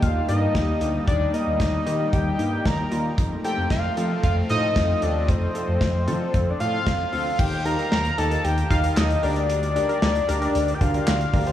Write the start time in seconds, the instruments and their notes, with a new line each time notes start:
Already playing: analog synth pad G3 A#3 D#4
0.02 analog synth bass D#2, analog synth lead F5, kick, closed hi-hat
0.28 analog synth bass G2, synth keys A#3 D#4 G4, analog synth lead D#5, closed hi-hat
0.42 synth keys A#3 D#4 A#4
0.55 analog synth bass D#2, kick, snare, closed hi-hat
0.81 analog synth bass D2, synth keys A#3 D#4 G4, closed hi-hat
1.07 analog synth bass D#2, analog synth lead D5, kick, closed hi-hat
1.34 synth keys A#3 D#4 A#4, analog synth lead D#5, closed hi-hat
1.47 analog synth bass D#2
1.60 analog synth bass D#2, kick, snare, closed hi-hat
1.86 analog synth bass D#3, synth keys A#3 D#4 G4, closed hi-hat
2.00 synth keys A#3 D#4 G4
2.13 analog synth bass D#2, analog synth lead G5, kick, closed hi-hat
2.39 analog synth bass G2, synth keys A#3 D#4 G4, closed hi-hat
2.52 synth keys A#3 D#4 G4
2.65 analog synth bass D#2, analog synth lead A#5, kick, snare, closed hi-hat
2.92 analog synth bass D#2, synth keys A#3 D#4 F4, closed hi-hat
3.18 analog synth bass F2, analog synth pad F3 A3 C4, kick, closed hi-hat
3.44 synth keys C4 F4 A4, analog synth lead G5, closed hi-hat
3.58 analog synth bass F2
3.70 analog synth bass F2, analog synth lead F5, kick, snare, closed hi-hat
3.97 analog synth bass F3, synth keys C4 F4 A4, closed hi-hat
4.10 synth keys C4 F4 A4
4.23 analog synth bass F2, analog synth lead F5, kick, closed hi-hat
4.50 analog synth bass A2, synth keys C4 F4 A4, analog synth lead D#5, closed hi-hat
4.63 synth keys C4 F4 A4
4.76 analog synth bass F2, kick, snare, closed hi-hat
5.02 analog synth bass D#2, synth keys C4 F4 A4, analog synth lead D5, closed hi-hat
5.29 analog synth bass F2, analog synth lead C5, kick, closed hi-hat
5.55 synth keys C4 F4 A4, closed hi-hat
5.68 analog synth bass F2
5.81 analog synth bass F2, kick, snare, closed hi-hat
6.07 analog synth bass F3, synth keys C4 F4 A4, closed hi-hat
6.21 synth keys C4 F4 A4
6.34 analog synth bass F2, kick, closed hi-hat
6.50 analog synth lead D5
6.60 analog synth bass A2, synth keys C4 F4 A4, analog synth lead F5, closed hi-hat
6.73 synth keys C4 F4 A4
6.86 analog synth bass F2, kick, snare, closed hi-hat
7.13 analog synth bass D2, synth keys C4 F4 A4, open hi-hat
7.39 analog synth bass D#2, analog synth lead G5, kick, crash
7.52 closed hi-hat
7.65 synth keys D#4 G4 A#4, analog synth lead A#5, closed hi-hat
7.79 synth keys D#4 G4 A#4, closed hi-hat
7.92 analog synth bass D#2, analog synth lead A#5, snare
8.05 closed hi-hat
8.18 analog synth bass D#2, synth keys D#4 G4 A4, analog synth lead A5, closed hi-hat
8.31 synth keys D#4 G4 A#4, closed hi-hat
8.44 analog synth bass D#2, analog synth lead G5, closed hi-hat
8.58 closed hi-hat
8.71 analog synth bass D#2, synth keys D#4 G4 A#4, analog synth lead F5, kick, closed hi-hat
8.84 synth keys D#4 G4 A#4, closed hi-hat
8.97 analog synth bass D#2, analog synth lead D#5, snare, clap
9.10 closed hi-hat
9.23 analog synth bass D2, synth keys D4 G4 A#4, analog synth lead D5, open hi-hat
9.36 closed hi-hat
9.50 closed hi-hat
9.63 closed hi-hat
9.76 synth keys D4 G4 A#4, closed hi-hat
9.89 synth keys D4 G4 A#4, closed hi-hat
10.02 analog synth bass D2, snare
10.15 closed hi-hat
10.29 analog synth bass D2, synth keys D4 G4 A#4, closed hi-hat
10.42 synth keys D4 G4 A#4, closed hi-hat
10.55 analog synth bass D2, closed hi-hat
10.68 closed hi-hat
10.74 analog synth lead G5
10.81 analog synth bass D2, synth keys D4 G4 A#4, analog synth lead F5, kick, closed hi-hat
10.94 synth keys D4 G4 A#4, closed hi-hat
11.08 analog synth bass D2, snare, clap
11.21 closed hi-hat
11.34 analog synth bass D2, synth keys D4 G4 A#4, kick, open hi-hat
11.47 synth keys D4 G4 C5, closed hi-hat